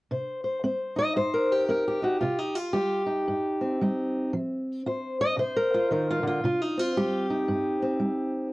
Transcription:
steel-string acoustic guitar
0.11 C3 C5
0.44 C5
0.64 C4 C5
0.96 D#4 D#5
1.16 G2 C5
1.34 A#4
1.52 G4
1.69 C4 A#4
1.88 G4
2.02 D#4 F#4
2.21 C3 F4
2.39 D#4
2.55 F4
2.73 G3 G4
3.07 D#4
3.28 G2
3.61 C4
3.82 G3 D#4
4.33 F3
4.87 F4 C5
5.21 D#5
5.37 C3 C5
5.56 A#4
5.74 F4
5.91 D#3 A#4
6.10 F4
6.23 D3
6.27 F4
6.44 C3 F4
6.61 D#4
6.77 C4 F4
6.97 G3 G4
7.30 D#4
7.48 G2
7.82 C4
8.00 G3

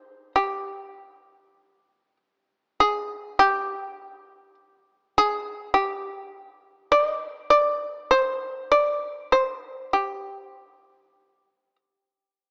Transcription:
shamisen
Already playing: C5
0.36 G4
2.80 G#4
3.39 G4
5.18 G#4
5.74 G4
6.92 D5
7.06 D#5
7.50 D5
8.11 C5
8.72 D5
9.32 C5
9.93 G4

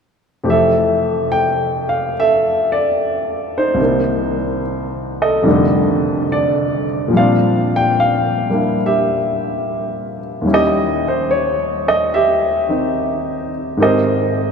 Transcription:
grand piano
0.44 F2 C3 E3 A3 G4
0.50 A4 E5
1.32 G5
1.89 F5
2.20 A4 E5
2.72 D5
3.58 D#4 C5
3.74 C2 C3
3.80 D#3 A#3
3.85 D#4
5.22 A4 D#5
5.42 F2 C3 D#3 G3
5.47 D3 A3
6.32 D5
7.08 A#2 F3
7.13 G3 C4
7.17 D4 D5 F5
7.76 G5
8.00 F5
8.50 G3 A#3 D4 E4
8.86 G4 E5
10.42 D#2 D#3 G3
10.47 C#4 E4
10.53 G4 D#5
11.08 C5
11.31 C#5
11.88 D#5
12.14 G4 E5
12.69 D#3 C4 D#4
13.77 G#2 D#3 C4 G4
13.81 A#4 C5 D#5

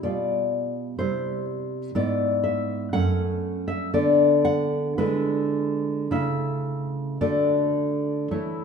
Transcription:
nylon-string guitar
0.03 B2 G3 F4 D5
0.99 C3 G3 E4 C5
1.95 G#2 B3 E4 D5
2.44 E5
2.93 F#2 A3 C#4 F#5
3.68 E5
3.94 D3 B3 D4 D5
4.45 F#5
4.98 D3 G#3 E4 B4
6.11 C#3 A3 E4 E5
7.21 D3 A3 F#4 D5
8.31 E3 A3 E4 C#5

